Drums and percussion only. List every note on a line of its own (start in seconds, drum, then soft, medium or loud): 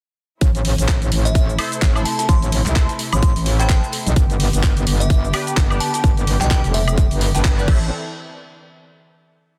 0.41 kick loud
0.41 closed hi-hat medium
0.41 cabasa medium
0.55 closed hi-hat soft
0.55 cabasa soft
0.65 open hi-hat loud
0.65 open hi-hat medium
0.78 closed hi-hat soft
0.78 cabasa medium
0.88 kick loud
0.88 snare loud
0.88 clap loud
0.88 closed hi-hat medium
0.88 cabasa medium
1.02 closed hi-hat medium
1.02 cabasa soft
1.11 closed hi-hat medium
1.11 open hi-hat loud
1.25 closed hi-hat soft
1.25 cabasa medium
1.35 kick loud
1.35 closed hi-hat medium
1.35 cabasa medium
1.49 cabasa soft
1.58 closed hi-hat medium
1.58 open hi-hat loud
1.58 high woodblock medium
1.72 closed hi-hat soft
1.72 cabasa medium
1.81 kick loud
1.81 snare loud
1.81 clap loud
1.81 closed hi-hat medium
1.81 cabasa medium
1.96 cabasa soft
1.96 high woodblock medium
2.05 closed hi-hat medium
2.05 open hi-hat loud
2.19 snare medium
2.19 closed hi-hat medium
2.19 cabasa medium
2.29 kick loud
2.29 closed hi-hat medium
2.29 cabasa medium
2.42 closed hi-hat soft
2.42 cabasa soft
2.52 closed hi-hat medium
2.52 open hi-hat loud
2.66 clap soft
2.66 closed hi-hat soft
2.66 cabasa medium
2.75 kick loud
2.75 snare loud
2.75 clap loud
2.75 closed hi-hat medium
2.75 cabasa medium
2.89 snare soft
2.89 closed hi-hat medium
2.89 cabasa soft
2.99 closed hi-hat medium
2.99 open hi-hat loud
3.12 closed hi-hat soft
3.12 cabasa medium
3.12 high woodblock medium
3.23 kick loud
3.23 closed hi-hat medium
3.23 cabasa medium
3.36 open hi-hat medium
3.36 cabasa soft
3.46 snare medium
3.46 closed hi-hat medium
3.46 open hi-hat loud
3.59 snare medium
3.59 closed hi-hat soft
3.59 cabasa medium
3.69 kick loud
3.69 snare loud
3.69 clap loud
3.69 closed hi-hat medium
3.69 cabasa medium
3.84 cabasa soft
3.92 closed hi-hat medium
3.92 open hi-hat loud
4.07 closed hi-hat medium
4.07 cabasa medium
4.16 kick loud
4.16 closed hi-hat medium
4.16 cabasa medium
4.30 closed hi-hat soft
4.30 cabasa soft
4.40 open hi-hat loud
4.40 open hi-hat medium
4.53 closed hi-hat soft
4.53 cabasa medium
4.63 kick loud
4.63 snare loud
4.63 clap loud
4.63 closed hi-hat medium
4.63 cabasa medium
4.77 closed hi-hat soft
4.77 cabasa soft
4.87 closed hi-hat medium
4.87 open hi-hat loud
5.00 closed hi-hat soft
5.00 cabasa medium
5.10 kick loud
5.10 closed hi-hat medium
5.10 cabasa medium
5.24 cabasa soft
5.33 closed hi-hat medium
5.33 open hi-hat loud
5.33 high woodblock medium
5.47 closed hi-hat soft
5.47 cabasa medium
5.57 kick loud
5.57 snare loud
5.57 clap loud
5.57 closed hi-hat medium
5.57 cabasa medium
5.70 cabasa soft
5.70 high woodblock medium
5.80 closed hi-hat medium
5.80 open hi-hat loud
5.94 snare soft
5.94 closed hi-hat medium
5.94 cabasa medium
6.04 kick loud
6.04 closed hi-hat medium
6.04 closed hi-hat loud
6.04 cabasa medium
6.17 closed hi-hat soft
6.17 cabasa soft
6.27 closed hi-hat medium
6.27 open hi-hat loud
6.41 clap soft
6.41 closed hi-hat soft
6.41 cabasa medium
6.51 kick loud
6.51 snare loud
6.51 clap loud
6.51 closed hi-hat medium
6.51 cabasa medium
6.64 snare soft
6.64 closed hi-hat soft
6.64 cabasa soft
6.74 closed hi-hat medium
6.74 open hi-hat loud
6.88 closed hi-hat soft
6.88 cabasa medium
6.88 high woodblock medium
6.98 kick loud
6.98 closed hi-hat medium
6.98 cabasa medium
7.11 open hi-hat medium
7.11 cabasa soft
7.21 snare medium
7.21 closed hi-hat medium
7.21 open hi-hat loud
7.35 snare medium
7.35 closed hi-hat soft
7.35 cabasa medium
7.45 kick loud
7.45 snare loud
7.45 clap loud
7.45 closed hi-hat medium
7.45 cabasa medium
7.59 cabasa soft
7.68 kick loud
7.68 crash medium